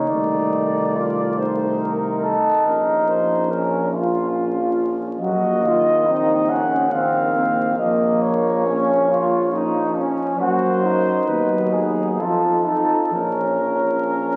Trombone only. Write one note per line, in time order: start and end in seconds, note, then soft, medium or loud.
0.10 2.33 D#3 soft
2.65 5.17 F3 soft
5.21 5.60 F#3 soft
5.63 6.89 D#3 soft
6.91 7.79 D#3 soft
7.78 9.34 F3 medium
9.51 10.36 F3 soft
10.38 11.24 F#3 soft
11.29 12.21 F#3 soft
12.19 13.12 F3 soft
13.13 14.36 F3 soft